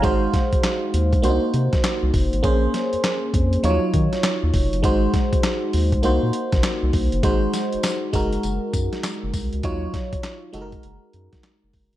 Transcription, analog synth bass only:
X:1
M:4/4
L:1/16
Q:"Swing 16ths" 1/4=100
K:Abmix
V:1 name="Analog synth bass" clef=bass
A,,,2 z E,, z2 E,,2 C,, z C, z2 C,, G,,, A,,, | B,,,2 z F,, z2 F,,2 E,, z E, z2 E,, F,,, G,,, | A,,,2 z E,, z2 E,,2 C,, B,, z B,,, z C,, C,, G,,, | A,,,2 z G,,, z2 G,,,2 G,,, z G,, z2 G,,, C,, D,, |
E,,2 z G,,, z2 G,,,2 G,,, z G,, z2 G,,, G,,, F,,, |]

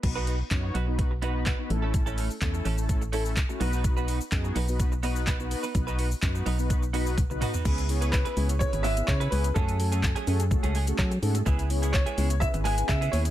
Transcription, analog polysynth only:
X:1
M:4/4
L:1/16
Q:1/4=126
K:Bmix
V:1 name="Analog polysynth"
[B,DFB]3 z [B,DFc]2 z [B,DFB]2 z [B,DFB]2 z [B,DFB] [A,CEA]2- | [A,CEA]3 z [A,CEA]2 z [A,CEA]2 z [A,CEA]2 z [A,CEF] [B,DFB]2- | [B,DFB]3 z [B,DFG]2 z [B,DFB]2 z [B,DFB]2 z [B,DFB]2 z | [B,DFB]3 z [B,DFB]2 z [B,DFB]2 z [B,DFB]2 z [B,DFB]2 z |
[B,CEGB] z [B,CEGc]3 z [B,CEGc] z [B,CEGB]2 z [B,CEGB]2 z [B,CEGB] z | [A,CFGA] z [A,CFAg]3 z [A,CFGA] z [A,CFGA]2 z [A,CFGA]2 z [A,CFGA] z | [B,CEGB] z [B,CEGc]3 z [B,CEGc] z [B,CEGB]2 z [B,CEGB]2 z [B,CEGc] z |]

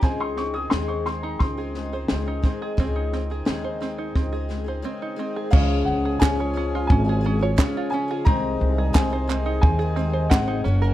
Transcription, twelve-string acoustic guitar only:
X:1
M:4/4
L:1/16
Q:1/4=88
K:Abmix
V:1 name="Twelve-string acoustic guitar"
[D,A,CEA]3 [CEA] [D,A,CEA]2 [A,CEA]3 [CEA] [A,CEA] [CEA] [D,A,CEA]2 [A,CEA]2 | [D,A,CEA]3 [CEA] [D,A,CEA]2 [A,CEA]3 [CEA] [A,CEA] [CEA] [D,A,CEA]2 [A,CEA]2 | [D,A,DA]4 [D,A,DFA] [DFA] [A,DFA]3 [DFA] [A,DFA] [DFA] [D,A,DFA]2 [A,DFA] [DFA] | [C,E,A,CEA]4 [C,E,A,CEA] [A,CEA] [A,CEA]3 [A,CEA] [A,CEA]2 [C,E,A,CEA]2 [G,DGB] [DGB] |]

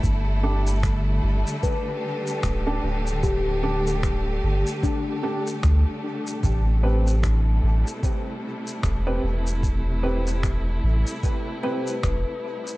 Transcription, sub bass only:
X:1
M:4/4
L:1/8
Q:"Swing 16ths" 1/4=75
K:Am
V:1 name="Sub bass" clef=bass
G,,,3 G,,, z2 D,,, D,,,- | D,,,3 G,,, z2 D,, z | A,,,3 A,,, z2 E,,, E,,,- | E,,,3 A,,, z2 E,,, z |]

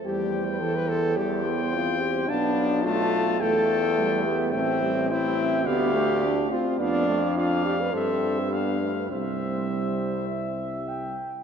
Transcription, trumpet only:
X:1
M:4/4
L:1/8
Q:1/4=106
K:C
V:1 name="Trumpet"
g4 g4 | a2 a2 g4 | g2 g2 f3 z | f2 f2 e2 f2 |
e6- e z |]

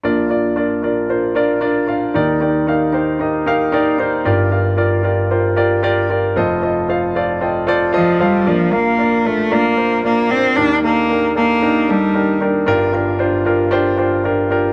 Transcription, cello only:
X:1
M:4/4
L:1/8
Q:1/4=114
K:Bb
V:1 name="Cello"
z8 | z8 | z8 | z6 F, G, |
F, B,2 A, B,2 B, C | D B,2 B,2 G,2 z | z8 |]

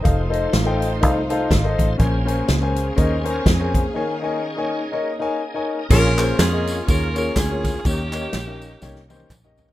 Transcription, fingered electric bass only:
X:1
M:4/4
L:1/8
Q:"Swing" 1/4=123
K:Bbdor
V:1 name="Fingered electric bass" clef=bass
F,,,2 =A,,,2 C,,2 _A,,, =A,,, | B,,,2 D,,2 E,,2 F,,2 | z8 | B,,,2 F,,2 E,,2 =D,,2 |
E,,2 B,,,2 C,,2 B,,,2 |]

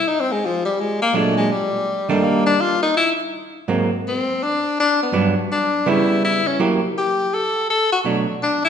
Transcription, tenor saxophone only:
X:1
M:4/4
L:1/8
Q:"Swing" 1/4=165
K:Bphr
V:1 name="Tenor saxophone"
(3_E C _A, =F, G, A, _B, =A, _A, | G,3 A, _B, D =F _E | E z4 z C2 | D2 D B, z2 D2 |
E2 E ^C z2 G2 | A2 A F z2 D E |]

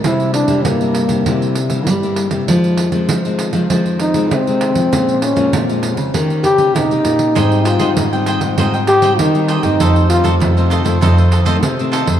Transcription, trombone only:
X:1
M:4/4
L:1/8
Q:1/4=98
K:Fphr
V:1 name="Trombone"
=E =D B,3 z3 | z4 z E C2- | C D z3 =G E2- | E F z3 =G E2- |
E F z6 |]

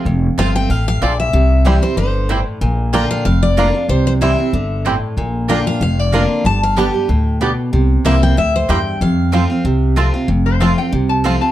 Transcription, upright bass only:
X:1
M:4/4
L:1/8
Q:"Swing" 1/4=188
K:F
V:1 name="Upright bass" clef=bass
F,,,2 G,,,2 A,,,2 B,,,2 | C,,4 G,,,4 | B,,,4 F,,,4 | C,,4 G,,,4 |
B,,,4 F,,,4 | G,,,4 D,,4 | C,,2 C,,2 D,,2 E,,2 | F,,4 C,,4 |
F,,,4 C,,4 |]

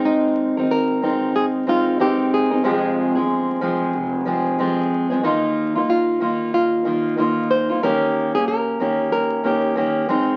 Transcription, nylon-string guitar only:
X:1
M:4/4
L:1/16
Q:"Swing 16ths" 1/4=93
K:Ebmix
V:1 name="Nylon-string guitar"
E4 B4 A2 F2 G2 A2 | A12- A2 z2 | E4 F4 F6 c2 | B3 A B4 B4 z4 |]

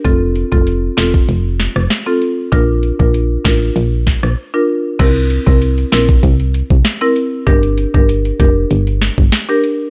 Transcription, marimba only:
X:1
M:4/4
L:1/16
Q:1/4=97
K:Cmix
V:1 name="Marimba"
[CFA] z2 [CFA]3 [CFA]2 z4 z [CFA] z2 | [DFB] z2 [DFB]3 [DFB]2 z4 z [DFB] z2 | [CEB] z2 [CEB]3 [CEB]2 z4 z [CEB] z2 | [DGB] z2 [DGB]3 [DGB]2 z4 z [DGB] z2 |]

